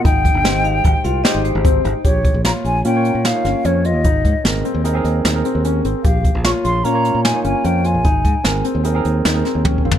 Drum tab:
HH |x--x--x--x--x--x--x--x--x--x--|x--x--x--x--x--x--x--x--x--x--|x--x--x--x--x--x--x--x--x--x--|x--x--x--x--x--x--x--x--x--x--|
SD |------o-----------o-----------|------o-----------o--o--------|------o-----------o-----------|------o-----------o-----------|
T1 |------------------------------|------------------------------|------------------------------|------------------------------|
FT |------------------------------|------------------------------|------------------------------|------------------------------|
BD |o--o--------o-----------o-----|o--o--------------------------|o--o--------------------------|o--o--------------------------|

HH |x--x--x--x--x--x--x--x--------|
SD |------o-----------o--o--------|
T1 |------------------------o-----|
FT |----------------------------o-|
BD |o--o--------------------o-o---|